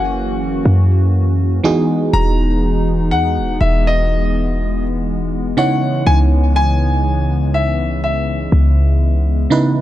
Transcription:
Already playing: F#1 E3 F#3 A#3 C#4 E4 F#4 G#4 A#4 F#5
0.66 F#2
1.63 E3 G#3 B3 D#4 F#4 G#4
2.13 E1 A#5
3.11 E2 F#5
3.38 E1
3.61 E1 E5
3.87 D#5
5.57 C#3 B3 D#4 E4 C#5 F#5
6.07 C#2 G#5
6.56 G#5
7.54 E5
8.04 E5
8.52 C#2
9.50 C#3 B3 D#4 E4 B4

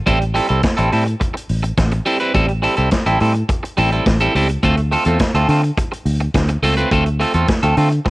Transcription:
0.06 A1 G3 C4 E4 A4, kick, closed hi-hat
0.21 muted clean electric guitar stroke, closed hi-hat
0.34 G3 C4 E4 A4, open hi-hat
0.49 C2 G3 C4 E4 A4, closed hi-hat
0.63 kick, snare, closed hi-hat
0.77 A1 G3 C4 E4 A4, closed hi-hat
0.92 A2 G3 C4 E4 A4, open hi-hat
1.06 muted clean electric guitar stroke, closed hi-hat
1.20 muted clean electric guitar stroke, kick, closed hi-hat
1.34 muted clean electric guitar stroke, closed hi-hat
1.49 A1, open hi-hat
1.63 muted clean electric guitar stroke, closed hi-hat
1.78 A1, muted clean electric guitar stroke, kick, snare, closed hi-hat
1.91 muted clean electric guitar stroke, closed hi-hat
2.06 G3 C4 E4 A4, open hi-hat
2.20 G3 C4 E4 B4, closed hi-hat
2.34 A1 G3 C4 E4 A4, kick, closed hi-hat
2.49 muted clean electric guitar stroke, closed hi-hat
2.62 G3 C4 E4 A4, open hi-hat
2.77 C2 G3 C4 E4 A4, closed hi-hat
2.91 kick, snare, closed hi-hat
3.06 A1 G3 C4 E4 A4, closed hi-hat
3.20 A2 G3 C4 E4 A4, open hi-hat
3.35 muted clean electric guitar stroke, closed hi-hat
3.49 muted clean electric guitar stroke, kick, closed hi-hat
3.63 muted clean electric guitar stroke, closed hi-hat
3.77 A1 G3 C4 E4 A4, open hi-hat
3.92 G3 C4 E4 A4, closed hi-hat
4.06 A1, muted clean electric guitar stroke, kick, snare, closed hi-hat
4.20 G3 C4 E4 A4, closed hi-hat
4.35 C#2 G3 C4 E4 A4, open hi-hat
4.49 muted clean electric guitar stroke, closed hi-hat
4.63 D2 A3 C4 F4 A4, kick, closed hi-hat
4.77 muted clean electric guitar stroke, closed hi-hat
4.92 A3 C4 F4 A4, open hi-hat
5.05 E2 A3 C4 F4 A4, closed hi-hat
5.19 muted clean electric guitar stroke, kick, snare, closed hi-hat
5.34 D2 A3 C4 F4 A4, closed hi-hat
5.48 D3 A3 C4 F4 A4, open hi-hat
5.63 muted clean electric guitar stroke, closed hi-hat
5.77 muted clean electric guitar stroke, kick, closed hi-hat
5.92 muted clean electric guitar stroke, closed hi-hat
6.05 D2, open hi-hat
6.20 muted clean electric guitar stroke, closed hi-hat
6.34 D2, muted clean electric guitar stroke, kick, snare, closed hi-hat
6.48 muted clean electric guitar stroke, closed hi-hat
6.62 C#2 A3 C4 F4 A4, open hi-hat
6.77 A3 C4 F4 B4, closed hi-hat
6.91 D2 A3 C4 F4 A4, kick, closed hi-hat
7.06 muted clean electric guitar stroke, closed hi-hat
7.20 A3 C4 F4 A4, open hi-hat
7.34 E2 A3 C4 F4 A4, closed hi-hat
7.48 muted clean electric guitar stroke, kick, snare, closed hi-hat
7.63 D2 A3 C4 F4 A4, closed hi-hat
7.77 D3 A3 C4 F4 A4, open hi-hat
7.91 muted clean electric guitar stroke, closed hi-hat
8.05 muted clean electric guitar stroke, kick, snare

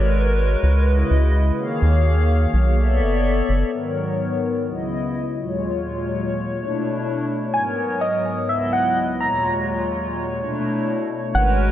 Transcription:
Already playing: G#1 G#3 F#4 A#4 B4 C#5
0.63 C#2
0.87 C#3 E4 D#5
1.11 C#2
1.58 D#3 A#3 G#4 C#5 F5
1.82 D#2
2.54 B1
2.77 B3 A4 C#5 D5 E5
3.01 F#1
3.49 F#1
3.73 G#2 D#3 F#3 B3 A#4 C#5
4.68 C#2 C#3 E4 D#5
5.39 D#2 A#2 F#3 G#3 F4 C#5
6.58 B2 A3 D4 E4
7.54 G#2 F#3 B3 A#4 C#5 G#5
8.01 D#5
8.49 C#2 B3 E4 D#5 E5
8.73 F#5
9.20 D#2 A#2 G#3 F4 C#5 A#5
10.39 B2 A3 D4 E4
11.35 G#1 G#3 C#4 F#4 A#4 B4 C#5 F#5

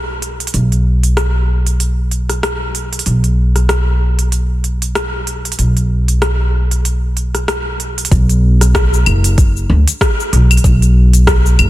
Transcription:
Already playing: B1
0.22 open hi-hat
0.40 open hi-hat
0.47 open hi-hat
0.54 B1, open hi-hat
0.72 open hi-hat
1.03 open hi-hat
1.17 cross-stick, open hi-hat
1.67 open hi-hat
1.80 open hi-hat
2.11 open hi-hat
2.30 cross-stick, open hi-hat
2.43 cross-stick, open hi-hat
2.75 open hi-hat
2.93 open hi-hat
2.99 open hi-hat
3.06 B1, open hi-hat
3.24 open hi-hat
3.56 cross-stick, open hi-hat
3.69 cross-stick, open hi-hat
4.19 open hi-hat
4.32 open hi-hat
4.64 open hi-hat
4.82 open hi-hat
4.95 cross-stick, open hi-hat
5.27 open hi-hat
5.45 open hi-hat
5.52 open hi-hat
5.59 B1, open hi-hat
5.77 open hi-hat
6.08 open hi-hat
6.22 cross-stick, open hi-hat
6.71 open hi-hat
6.85 open hi-hat
7.17 open hi-hat
7.35 cross-stick, open hi-hat
7.48 cross-stick, open hi-hat
7.80 open hi-hat
7.98 open hi-hat
8.05 open hi-hat
8.12 B1, kick, open hi-hat, cabasa
8.29 open hi-hat, cabasa
8.61 cross-stick, open hi-hat, cabasa
8.75 kick, cross-stick, open hi-hat, cabasa
8.94 cabasa
9.06 F#1, open hi-hat, claves
9.24 open hi-hat, cabasa
9.38 kick, open hi-hat, cabasa
9.57 cabasa
9.70 D2
9.88 open hi-hat, cabasa
10.01 kick, cross-stick, open hi-hat, cabasa
10.20 cabasa
10.33 B1, open hi-hat
10.51 open hi-hat, cabasa, claves
10.57 open hi-hat
10.64 B1, kick, open hi-hat, cabasa
10.82 open hi-hat, cabasa
11.13 open hi-hat, cabasa
11.27 kick, cross-stick, open hi-hat, cabasa
11.46 cabasa
11.59 F#1, open hi-hat, claves

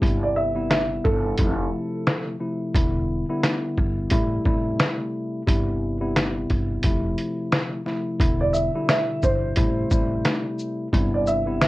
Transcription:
0.01 G1 C3 G3 B3 E4, kick, closed hi-hat
0.23 D5
0.36 E5
0.55 C3 G3 B3 E4
0.70 E5, snare, closed hi-hat
1.04 G1 A4, kick
1.37 F1 C3 F3 A3 E4, kick, closed hi-hat
2.07 snare, closed hi-hat
2.40 C3 F3 A3 E4
2.74 E1 D3 G3 B3 E4, kick, closed hi-hat
3.29 D3 G3 B3 E4
3.43 snare, closed hi-hat
3.77 G1, kick
4.10 A1 C3 G3 A3 E4, kick, closed hi-hat
4.45 A1 C3 G3 A3 E4, kick
4.79 snare, closed hi-hat
5.46 G1 C3 G3 B3 E4, kick, closed hi-hat
6.00 C3 G3 B3 E4
6.16 snare, closed hi-hat
6.50 G1, kick, closed hi-hat
6.83 F1 C3 F3 A3 E4, kick, closed hi-hat
7.18 closed hi-hat
7.52 snare, closed hi-hat
7.85 C3 F3 A3 E4, snare
8.20 E1 D3 G3 B3 E4, kick, closed hi-hat
8.41 D5
8.53 E5, shaker
8.75 B2 D3 G3 E4
8.89 E5, snare, closed hi-hat
9.23 G1 C5, kick, shaker
9.56 A1 C3 G3 A3 E4, kick, closed hi-hat
9.91 A1 C3 G3 A3 E4, kick, shaker
10.25 snare, closed hi-hat
10.59 shaker
10.92 G1 C3 G3 B3 E4, kick, closed hi-hat
11.14 D5
11.27 E5, shaker
11.46 C3 G3 B3 E4
11.61 E5, snare, closed hi-hat

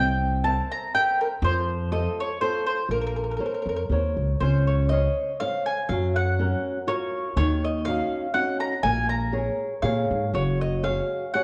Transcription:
Already playing: C2 C4 G5
0.44 A#4 C5 E5 A5
0.72 A#5
0.95 A#4 C5 E5 G5
1.21 A#4
1.42 F2 F3 C5
1.92 F4 A4 C5 D#5
2.20 C#5
2.41 F4 A4 C5
2.66 C5
2.89 A#1 A#3 A#4
3.01 A#4
3.07 A#4
3.16 A#4
3.24 A#4
3.31 A#4
3.37 A#4 C5 C#5
3.46 A#4
3.54 A#4
3.62 F2 A#4
3.69 A#4
3.76 A#4
3.89 D#2 A#4 C5 C#5
4.17 C#2
4.40 C#2 C#4 C5
4.67 C#5
4.89 C5 C#5 D#5 F5
5.40 C5 C#5 F5
5.66 G#5
5.89 F#2 F#3 F5
6.16 F#5
6.39 C#4 F#4 A#4
6.87 F4 F#4 A#4 C#5
7.36 D#2 D#3 C#5
7.64 D#5
7.85 C#4 D#4 F#4 F5
8.34 C#4 D#4 F#4 F#5
8.60 A#5
8.83 A#1 A#3 G#5
9.09 A#5
9.32 G#4 A#4 C#5
9.82 A#2 G#4 A#4 C#5 F5
10.11 G#2
10.33 F#1 F#3 C#5
10.61 D#5
10.83 F#4 G#4 C#5 F5
11.34 F#4 G#4 C#5 F#5

